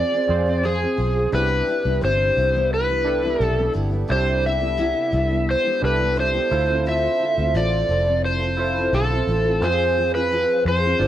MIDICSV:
0, 0, Header, 1, 5, 480
1, 0, Start_track
1, 0, Key_signature, 0, "major"
1, 0, Tempo, 691005
1, 925, Time_signature, 4, 2, 24, 8
1, 7693, End_track
2, 0, Start_track
2, 0, Title_t, "Electric slide guitar"
2, 0, Program_c, 0, 29
2, 0, Note_on_c, 0, 74, 91
2, 454, Note_on_c, 0, 68, 70
2, 473, Note_off_c, 0, 74, 0
2, 902, Note_off_c, 0, 68, 0
2, 936, Note_on_c, 0, 71, 85
2, 1418, Note_off_c, 0, 71, 0
2, 1421, Note_on_c, 0, 72, 78
2, 1900, Note_off_c, 0, 72, 0
2, 1903, Note_on_c, 0, 71, 73
2, 2382, Note_off_c, 0, 71, 0
2, 2382, Note_on_c, 0, 69, 73
2, 2586, Note_off_c, 0, 69, 0
2, 2860, Note_on_c, 0, 72, 95
2, 3076, Note_off_c, 0, 72, 0
2, 3100, Note_on_c, 0, 76, 103
2, 3825, Note_on_c, 0, 72, 86
2, 3834, Note_off_c, 0, 76, 0
2, 4039, Note_off_c, 0, 72, 0
2, 4063, Note_on_c, 0, 71, 82
2, 4278, Note_off_c, 0, 71, 0
2, 4307, Note_on_c, 0, 72, 84
2, 4749, Note_off_c, 0, 72, 0
2, 4783, Note_on_c, 0, 76, 98
2, 5256, Note_on_c, 0, 74, 77
2, 5268, Note_off_c, 0, 76, 0
2, 5731, Note_off_c, 0, 74, 0
2, 5733, Note_on_c, 0, 72, 83
2, 6213, Note_on_c, 0, 69, 78
2, 6223, Note_off_c, 0, 72, 0
2, 6696, Note_on_c, 0, 72, 94
2, 6703, Note_off_c, 0, 69, 0
2, 7046, Note_off_c, 0, 72, 0
2, 7049, Note_on_c, 0, 71, 81
2, 7382, Note_off_c, 0, 71, 0
2, 7419, Note_on_c, 0, 72, 83
2, 7693, Note_off_c, 0, 72, 0
2, 7693, End_track
3, 0, Start_track
3, 0, Title_t, "Synth keys"
3, 0, Program_c, 1, 88
3, 0, Control_c, 1, 64, 127
3, 0, Note_on_c, 1, 60, 68
3, 0, Note_on_c, 1, 65, 60
3, 0, Note_on_c, 1, 68, 60
3, 0, Note_on_c, 1, 72, 68
3, 194, Note_off_c, 1, 60, 0
3, 194, Note_on_c, 1, 60, 62
3, 202, Note_off_c, 1, 65, 0
3, 202, Note_on_c, 1, 65, 59
3, 205, Note_off_c, 1, 68, 0
3, 205, Note_on_c, 1, 68, 58
3, 210, Note_off_c, 1, 72, 0
3, 210, Note_on_c, 1, 72, 73
3, 783, Note_off_c, 1, 60, 0
3, 787, Note_off_c, 1, 65, 0
3, 789, Note_off_c, 1, 68, 0
3, 792, Note_off_c, 1, 72, 0
3, 918, Note_on_c, 1, 62, 64
3, 924, Note_on_c, 1, 64, 58
3, 928, Note_on_c, 1, 67, 54
3, 934, Control_c, 1, 64, 0
3, 1064, Control_c, 1, 64, 127
3, 1700, Note_off_c, 1, 62, 0
3, 1703, Note_off_c, 1, 64, 0
3, 1705, Note_off_c, 1, 67, 0
3, 2116, Note_on_c, 1, 62, 66
3, 2122, Note_on_c, 1, 64, 59
3, 2127, Note_on_c, 1, 67, 57
3, 2133, Note_on_c, 1, 69, 76
3, 2704, Note_off_c, 1, 62, 0
3, 2707, Note_off_c, 1, 64, 0
3, 2710, Note_off_c, 1, 67, 0
3, 2713, Note_off_c, 1, 69, 0
3, 2839, Note_on_c, 1, 62, 64
3, 2845, Note_on_c, 1, 64, 61
3, 2852, Note_on_c, 1, 67, 56
3, 3620, Note_off_c, 1, 62, 0
3, 3623, Note_off_c, 1, 64, 0
3, 3627, Note_off_c, 1, 67, 0
3, 4040, Note_on_c, 1, 62, 62
3, 4046, Note_on_c, 1, 64, 58
3, 4051, Note_on_c, 1, 67, 58
3, 4057, Note_on_c, 1, 69, 68
3, 4513, Note_off_c, 1, 64, 0
3, 4521, Note_on_c, 1, 64, 73
3, 4522, Note_off_c, 1, 69, 0
3, 4523, Note_off_c, 1, 62, 0
3, 4524, Note_on_c, 1, 65, 68
3, 4528, Note_off_c, 1, 67, 0
3, 4530, Note_on_c, 1, 69, 66
3, 4535, Control_c, 1, 64, 0
3, 4537, Note_on_c, 1, 72, 84
3, 4667, Control_c, 1, 64, 127
3, 5301, Note_off_c, 1, 64, 0
3, 5303, Note_off_c, 1, 65, 0
3, 5306, Note_off_c, 1, 69, 0
3, 5309, Note_off_c, 1, 72, 0
3, 5953, Note_on_c, 1, 64, 68
3, 5957, Note_on_c, 1, 65, 60
3, 5965, Note_on_c, 1, 69, 62
3, 5971, Note_on_c, 1, 72, 73
3, 6542, Note_off_c, 1, 64, 0
3, 6545, Note_off_c, 1, 65, 0
3, 6549, Note_off_c, 1, 69, 0
3, 6552, Note_off_c, 1, 72, 0
3, 6673, Note_on_c, 1, 60, 69
3, 6679, Note_on_c, 1, 65, 58
3, 6683, Note_on_c, 1, 68, 61
3, 6694, Control_c, 1, 64, 0
3, 6812, Control_c, 1, 64, 127
3, 7457, Note_off_c, 1, 60, 0
3, 7460, Note_off_c, 1, 65, 0
3, 7462, Note_off_c, 1, 68, 0
3, 7636, Note_on_c, 1, 62, 75
3, 7643, Note_on_c, 1, 65, 71
3, 7648, Note_on_c, 1, 69, 64
3, 7653, Control_c, 1, 64, 0
3, 7656, Note_on_c, 1, 72, 78
3, 7693, Note_off_c, 1, 62, 0
3, 7693, Note_off_c, 1, 65, 0
3, 7693, Note_off_c, 1, 69, 0
3, 7693, Note_off_c, 1, 72, 0
3, 7693, End_track
4, 0, Start_track
4, 0, Title_t, "Steel-string acoustic guitar"
4, 0, Program_c, 2, 25
4, 0, Note_on_c, 2, 60, 43
4, 0, Note_on_c, 2, 65, 45
4, 0, Note_on_c, 2, 68, 51
4, 73, Note_off_c, 2, 68, 0
4, 82, Note_on_c, 2, 68, 51
4, 85, Note_off_c, 2, 65, 0
4, 90, Note_off_c, 2, 60, 0
4, 93, Note_on_c, 2, 65, 43
4, 99, Note_on_c, 2, 60, 37
4, 313, Note_off_c, 2, 68, 0
4, 321, Note_on_c, 2, 68, 47
4, 322, Note_off_c, 2, 65, 0
4, 330, Note_on_c, 2, 65, 44
4, 332, Note_off_c, 2, 60, 0
4, 340, Note_on_c, 2, 60, 40
4, 436, Note_off_c, 2, 60, 0
4, 440, Note_on_c, 2, 53, 64
4, 441, Note_off_c, 2, 65, 0
4, 444, Note_off_c, 2, 68, 0
4, 445, Note_on_c, 2, 60, 71
4, 449, Note_on_c, 2, 65, 70
4, 454, Note_on_c, 2, 68, 70
4, 553, Note_off_c, 2, 68, 0
4, 562, Note_on_c, 2, 68, 46
4, 563, Note_off_c, 2, 53, 0
4, 563, Note_off_c, 2, 65, 0
4, 565, Note_off_c, 2, 60, 0
4, 571, Note_on_c, 2, 65, 42
4, 577, Note_on_c, 2, 60, 39
4, 673, Note_off_c, 2, 60, 0
4, 676, Note_on_c, 2, 53, 57
4, 680, Note_off_c, 2, 65, 0
4, 682, Note_on_c, 2, 60, 56
4, 684, Note_off_c, 2, 68, 0
4, 689, Note_on_c, 2, 65, 60
4, 692, Note_on_c, 2, 68, 59
4, 919, Note_on_c, 2, 48, 77
4, 920, Note_off_c, 2, 53, 0
4, 923, Note_on_c, 2, 55, 73
4, 924, Note_off_c, 2, 60, 0
4, 927, Note_off_c, 2, 65, 0
4, 929, Note_off_c, 2, 68, 0
4, 930, Note_on_c, 2, 59, 68
4, 931, Note_on_c, 2, 64, 81
4, 1147, Note_off_c, 2, 48, 0
4, 1154, Note_off_c, 2, 55, 0
4, 1155, Note_on_c, 2, 48, 46
4, 1161, Note_off_c, 2, 59, 0
4, 1162, Note_on_c, 2, 55, 51
4, 1165, Note_off_c, 2, 64, 0
4, 1170, Note_on_c, 2, 59, 53
4, 1174, Note_on_c, 2, 64, 56
4, 1271, Note_off_c, 2, 64, 0
4, 1279, Note_off_c, 2, 59, 0
4, 1279, Note_on_c, 2, 64, 49
4, 1280, Note_off_c, 2, 48, 0
4, 1284, Note_off_c, 2, 55, 0
4, 1287, Note_on_c, 2, 59, 49
4, 1296, Note_on_c, 2, 55, 39
4, 1396, Note_off_c, 2, 55, 0
4, 1399, Note_on_c, 2, 48, 70
4, 1402, Note_off_c, 2, 64, 0
4, 1404, Note_on_c, 2, 55, 77
4, 1406, Note_off_c, 2, 59, 0
4, 1411, Note_on_c, 2, 64, 74
4, 1631, Note_off_c, 2, 48, 0
4, 1637, Note_off_c, 2, 55, 0
4, 1639, Note_on_c, 2, 48, 58
4, 1645, Note_on_c, 2, 55, 59
4, 1648, Note_off_c, 2, 64, 0
4, 1649, Note_on_c, 2, 59, 62
4, 1655, Note_on_c, 2, 64, 63
4, 1756, Note_off_c, 2, 64, 0
4, 1762, Note_off_c, 2, 48, 0
4, 1764, Note_off_c, 2, 59, 0
4, 1764, Note_on_c, 2, 64, 52
4, 1765, Note_off_c, 2, 55, 0
4, 1773, Note_on_c, 2, 59, 48
4, 1781, Note_on_c, 2, 55, 43
4, 1995, Note_off_c, 2, 64, 0
4, 2003, Note_off_c, 2, 59, 0
4, 2003, Note_on_c, 2, 64, 54
4, 2011, Note_on_c, 2, 59, 48
4, 2012, Note_off_c, 2, 55, 0
4, 2020, Note_on_c, 2, 55, 43
4, 2237, Note_off_c, 2, 64, 0
4, 2245, Note_off_c, 2, 59, 0
4, 2245, Note_on_c, 2, 64, 51
4, 2253, Note_off_c, 2, 55, 0
4, 2254, Note_on_c, 2, 59, 45
4, 2262, Note_on_c, 2, 55, 42
4, 2361, Note_off_c, 2, 55, 0
4, 2363, Note_off_c, 2, 59, 0
4, 2365, Note_off_c, 2, 64, 0
4, 2366, Note_on_c, 2, 48, 64
4, 2369, Note_on_c, 2, 55, 66
4, 2371, Note_on_c, 2, 59, 82
4, 2375, Note_on_c, 2, 64, 77
4, 2474, Note_off_c, 2, 64, 0
4, 2483, Note_on_c, 2, 64, 52
4, 2485, Note_off_c, 2, 59, 0
4, 2486, Note_off_c, 2, 48, 0
4, 2487, Note_off_c, 2, 55, 0
4, 2494, Note_on_c, 2, 59, 54
4, 2499, Note_on_c, 2, 55, 47
4, 2593, Note_off_c, 2, 55, 0
4, 2594, Note_on_c, 2, 48, 60
4, 2597, Note_off_c, 2, 59, 0
4, 2601, Note_on_c, 2, 55, 74
4, 2604, Note_off_c, 2, 64, 0
4, 2606, Note_on_c, 2, 59, 67
4, 2612, Note_on_c, 2, 64, 68
4, 2708, Note_off_c, 2, 64, 0
4, 2716, Note_off_c, 2, 59, 0
4, 2717, Note_on_c, 2, 64, 46
4, 2720, Note_off_c, 2, 48, 0
4, 2723, Note_off_c, 2, 55, 0
4, 2724, Note_on_c, 2, 59, 43
4, 2733, Note_on_c, 2, 55, 40
4, 2829, Note_off_c, 2, 55, 0
4, 2832, Note_on_c, 2, 48, 75
4, 2836, Note_off_c, 2, 64, 0
4, 2837, Note_on_c, 2, 55, 72
4, 2844, Note_on_c, 2, 64, 79
4, 2845, Note_off_c, 2, 59, 0
4, 3065, Note_off_c, 2, 48, 0
4, 3069, Note_off_c, 2, 55, 0
4, 3073, Note_on_c, 2, 48, 47
4, 3077, Note_on_c, 2, 55, 58
4, 3082, Note_off_c, 2, 64, 0
4, 3083, Note_on_c, 2, 59, 50
4, 3091, Note_on_c, 2, 64, 56
4, 3184, Note_off_c, 2, 64, 0
4, 3192, Note_on_c, 2, 64, 49
4, 3195, Note_off_c, 2, 59, 0
4, 3199, Note_off_c, 2, 48, 0
4, 3201, Note_off_c, 2, 55, 0
4, 3203, Note_on_c, 2, 59, 43
4, 3210, Note_on_c, 2, 55, 43
4, 3310, Note_off_c, 2, 55, 0
4, 3314, Note_off_c, 2, 59, 0
4, 3314, Note_on_c, 2, 48, 75
4, 3318, Note_on_c, 2, 55, 74
4, 3319, Note_off_c, 2, 64, 0
4, 3322, Note_on_c, 2, 59, 78
4, 3328, Note_on_c, 2, 64, 95
4, 3543, Note_off_c, 2, 48, 0
4, 3550, Note_off_c, 2, 55, 0
4, 3552, Note_on_c, 2, 48, 52
4, 3555, Note_off_c, 2, 59, 0
4, 3558, Note_on_c, 2, 55, 64
4, 3559, Note_off_c, 2, 64, 0
4, 3563, Note_on_c, 2, 59, 69
4, 3567, Note_on_c, 2, 64, 60
4, 3669, Note_off_c, 2, 64, 0
4, 3677, Note_on_c, 2, 64, 45
4, 3678, Note_off_c, 2, 59, 0
4, 3679, Note_off_c, 2, 48, 0
4, 3682, Note_off_c, 2, 55, 0
4, 3686, Note_on_c, 2, 59, 46
4, 3693, Note_on_c, 2, 55, 41
4, 3908, Note_off_c, 2, 64, 0
4, 3917, Note_on_c, 2, 64, 51
4, 3918, Note_off_c, 2, 59, 0
4, 3927, Note_off_c, 2, 55, 0
4, 3927, Note_on_c, 2, 59, 48
4, 3935, Note_on_c, 2, 55, 41
4, 4148, Note_off_c, 2, 64, 0
4, 4157, Note_on_c, 2, 64, 49
4, 4158, Note_off_c, 2, 59, 0
4, 4166, Note_off_c, 2, 55, 0
4, 4167, Note_on_c, 2, 59, 46
4, 4175, Note_on_c, 2, 55, 37
4, 4276, Note_off_c, 2, 55, 0
4, 4278, Note_off_c, 2, 59, 0
4, 4279, Note_on_c, 2, 48, 73
4, 4281, Note_off_c, 2, 64, 0
4, 4285, Note_on_c, 2, 55, 69
4, 4287, Note_on_c, 2, 59, 70
4, 4291, Note_on_c, 2, 64, 70
4, 4390, Note_off_c, 2, 64, 0
4, 4399, Note_on_c, 2, 64, 48
4, 4400, Note_off_c, 2, 59, 0
4, 4402, Note_off_c, 2, 48, 0
4, 4405, Note_off_c, 2, 55, 0
4, 4408, Note_on_c, 2, 59, 44
4, 4417, Note_on_c, 2, 55, 44
4, 4516, Note_on_c, 2, 50, 53
4, 4521, Note_off_c, 2, 59, 0
4, 4522, Note_off_c, 2, 64, 0
4, 4524, Note_on_c, 2, 60, 63
4, 4531, Note_off_c, 2, 55, 0
4, 4531, Note_on_c, 2, 65, 69
4, 4535, Note_on_c, 2, 69, 61
4, 4636, Note_off_c, 2, 69, 0
4, 4641, Note_off_c, 2, 50, 0
4, 4644, Note_on_c, 2, 69, 54
4, 4645, Note_off_c, 2, 60, 0
4, 4646, Note_off_c, 2, 65, 0
4, 4654, Note_on_c, 2, 65, 42
4, 4661, Note_on_c, 2, 60, 37
4, 4758, Note_off_c, 2, 60, 0
4, 4759, Note_off_c, 2, 65, 0
4, 4761, Note_on_c, 2, 50, 72
4, 4765, Note_off_c, 2, 69, 0
4, 4766, Note_on_c, 2, 60, 69
4, 4767, Note_on_c, 2, 65, 77
4, 4772, Note_on_c, 2, 69, 79
4, 4987, Note_off_c, 2, 50, 0
4, 4992, Note_off_c, 2, 60, 0
4, 4995, Note_on_c, 2, 50, 50
4, 5000, Note_off_c, 2, 65, 0
4, 5000, Note_on_c, 2, 60, 54
4, 5006, Note_off_c, 2, 69, 0
4, 5008, Note_on_c, 2, 65, 51
4, 5014, Note_on_c, 2, 69, 56
4, 5112, Note_off_c, 2, 69, 0
4, 5120, Note_off_c, 2, 50, 0
4, 5120, Note_on_c, 2, 69, 47
4, 5122, Note_off_c, 2, 65, 0
4, 5123, Note_off_c, 2, 60, 0
4, 5130, Note_on_c, 2, 65, 45
4, 5137, Note_on_c, 2, 60, 45
4, 5234, Note_off_c, 2, 60, 0
4, 5236, Note_off_c, 2, 65, 0
4, 5237, Note_on_c, 2, 50, 68
4, 5241, Note_off_c, 2, 69, 0
4, 5243, Note_on_c, 2, 60, 80
4, 5245, Note_on_c, 2, 65, 79
4, 5249, Note_on_c, 2, 69, 90
4, 5472, Note_off_c, 2, 50, 0
4, 5480, Note_off_c, 2, 60, 0
4, 5480, Note_on_c, 2, 50, 54
4, 5482, Note_off_c, 2, 65, 0
4, 5487, Note_off_c, 2, 69, 0
4, 5489, Note_on_c, 2, 60, 61
4, 5491, Note_on_c, 2, 65, 63
4, 5497, Note_on_c, 2, 69, 63
4, 5593, Note_off_c, 2, 69, 0
4, 5601, Note_on_c, 2, 69, 53
4, 5602, Note_off_c, 2, 65, 0
4, 5603, Note_off_c, 2, 50, 0
4, 5607, Note_off_c, 2, 60, 0
4, 5611, Note_on_c, 2, 65, 45
4, 5618, Note_on_c, 2, 60, 40
4, 5832, Note_off_c, 2, 69, 0
4, 5840, Note_on_c, 2, 69, 54
4, 5844, Note_off_c, 2, 65, 0
4, 5852, Note_off_c, 2, 60, 0
4, 5852, Note_on_c, 2, 65, 41
4, 5860, Note_on_c, 2, 60, 43
4, 6076, Note_off_c, 2, 69, 0
4, 6084, Note_off_c, 2, 65, 0
4, 6085, Note_on_c, 2, 69, 47
4, 6092, Note_off_c, 2, 60, 0
4, 6092, Note_on_c, 2, 65, 45
4, 6101, Note_on_c, 2, 60, 38
4, 6201, Note_off_c, 2, 60, 0
4, 6203, Note_off_c, 2, 65, 0
4, 6204, Note_on_c, 2, 50, 74
4, 6205, Note_off_c, 2, 69, 0
4, 6209, Note_on_c, 2, 60, 64
4, 6211, Note_on_c, 2, 65, 64
4, 6215, Note_on_c, 2, 69, 68
4, 6314, Note_off_c, 2, 69, 0
4, 6322, Note_on_c, 2, 69, 55
4, 6323, Note_off_c, 2, 65, 0
4, 6324, Note_off_c, 2, 50, 0
4, 6327, Note_off_c, 2, 60, 0
4, 6331, Note_on_c, 2, 65, 50
4, 6341, Note_on_c, 2, 60, 41
4, 6439, Note_off_c, 2, 60, 0
4, 6441, Note_on_c, 2, 50, 58
4, 6443, Note_off_c, 2, 69, 0
4, 6446, Note_off_c, 2, 65, 0
4, 6447, Note_on_c, 2, 60, 59
4, 6455, Note_on_c, 2, 65, 70
4, 6458, Note_on_c, 2, 69, 63
4, 6552, Note_off_c, 2, 69, 0
4, 6560, Note_on_c, 2, 69, 49
4, 6563, Note_off_c, 2, 50, 0
4, 6563, Note_off_c, 2, 65, 0
4, 6566, Note_off_c, 2, 60, 0
4, 6572, Note_on_c, 2, 65, 43
4, 6578, Note_on_c, 2, 60, 38
4, 6678, Note_off_c, 2, 60, 0
4, 6682, Note_off_c, 2, 65, 0
4, 6682, Note_on_c, 2, 53, 71
4, 6683, Note_off_c, 2, 69, 0
4, 6687, Note_on_c, 2, 60, 70
4, 6690, Note_on_c, 2, 65, 75
4, 6693, Note_on_c, 2, 68, 75
4, 6917, Note_off_c, 2, 53, 0
4, 6926, Note_off_c, 2, 60, 0
4, 6926, Note_on_c, 2, 53, 49
4, 6928, Note_off_c, 2, 65, 0
4, 6929, Note_off_c, 2, 68, 0
4, 6934, Note_on_c, 2, 60, 55
4, 6938, Note_on_c, 2, 65, 54
4, 6944, Note_on_c, 2, 68, 58
4, 7036, Note_off_c, 2, 68, 0
4, 7045, Note_off_c, 2, 53, 0
4, 7045, Note_on_c, 2, 68, 47
4, 7046, Note_off_c, 2, 65, 0
4, 7050, Note_off_c, 2, 60, 0
4, 7055, Note_on_c, 2, 65, 52
4, 7064, Note_on_c, 2, 60, 45
4, 7162, Note_off_c, 2, 60, 0
4, 7163, Note_on_c, 2, 53, 74
4, 7165, Note_off_c, 2, 68, 0
4, 7167, Note_off_c, 2, 65, 0
4, 7170, Note_on_c, 2, 60, 85
4, 7175, Note_on_c, 2, 65, 83
4, 7178, Note_on_c, 2, 68, 75
4, 7398, Note_off_c, 2, 53, 0
4, 7401, Note_off_c, 2, 60, 0
4, 7406, Note_on_c, 2, 53, 61
4, 7408, Note_off_c, 2, 65, 0
4, 7409, Note_on_c, 2, 60, 56
4, 7411, Note_off_c, 2, 68, 0
4, 7416, Note_on_c, 2, 65, 64
4, 7420, Note_on_c, 2, 68, 63
4, 7519, Note_off_c, 2, 68, 0
4, 7525, Note_off_c, 2, 53, 0
4, 7527, Note_off_c, 2, 60, 0
4, 7527, Note_on_c, 2, 68, 52
4, 7530, Note_off_c, 2, 65, 0
4, 7539, Note_on_c, 2, 65, 48
4, 7545, Note_on_c, 2, 60, 43
4, 7644, Note_off_c, 2, 60, 0
4, 7646, Note_off_c, 2, 68, 0
4, 7648, Note_on_c, 2, 55, 63
4, 7649, Note_off_c, 2, 65, 0
4, 7652, Note_on_c, 2, 60, 75
4, 7658, Note_on_c, 2, 65, 75
4, 7659, Note_on_c, 2, 69, 74
4, 7693, Note_off_c, 2, 55, 0
4, 7693, Note_off_c, 2, 60, 0
4, 7693, Note_off_c, 2, 65, 0
4, 7693, Note_off_c, 2, 69, 0
4, 7693, End_track
5, 0, Start_track
5, 0, Title_t, "Fingered electric bass"
5, 0, Program_c, 3, 33
5, 202, Note_on_c, 3, 41, 86
5, 587, Note_off_c, 3, 41, 0
5, 682, Note_on_c, 3, 35, 82
5, 876, Note_off_c, 3, 35, 0
5, 923, Note_on_c, 3, 36, 95
5, 1116, Note_off_c, 3, 36, 0
5, 1287, Note_on_c, 3, 36, 77
5, 1382, Note_off_c, 3, 36, 0
5, 1407, Note_on_c, 3, 31, 87
5, 1599, Note_off_c, 3, 31, 0
5, 1645, Note_on_c, 3, 36, 84
5, 2338, Note_off_c, 3, 36, 0
5, 2363, Note_on_c, 3, 35, 79
5, 2556, Note_off_c, 3, 35, 0
5, 2606, Note_on_c, 3, 31, 83
5, 2798, Note_off_c, 3, 31, 0
5, 2847, Note_on_c, 3, 36, 95
5, 3418, Note_off_c, 3, 36, 0
5, 3562, Note_on_c, 3, 36, 93
5, 3852, Note_off_c, 3, 36, 0
5, 4046, Note_on_c, 3, 36, 91
5, 4430, Note_off_c, 3, 36, 0
5, 4525, Note_on_c, 3, 38, 89
5, 4909, Note_off_c, 3, 38, 0
5, 5125, Note_on_c, 3, 38, 78
5, 5221, Note_off_c, 3, 38, 0
5, 5239, Note_on_c, 3, 33, 100
5, 5434, Note_off_c, 3, 33, 0
5, 5478, Note_on_c, 3, 29, 83
5, 6174, Note_off_c, 3, 29, 0
5, 6202, Note_on_c, 3, 35, 80
5, 6395, Note_off_c, 3, 35, 0
5, 6441, Note_on_c, 3, 33, 86
5, 6679, Note_off_c, 3, 33, 0
5, 6679, Note_on_c, 3, 41, 97
5, 7254, Note_off_c, 3, 41, 0
5, 7399, Note_on_c, 3, 41, 79
5, 7593, Note_off_c, 3, 41, 0
5, 7638, Note_on_c, 3, 31, 92
5, 7693, Note_off_c, 3, 31, 0
5, 7693, End_track
0, 0, End_of_file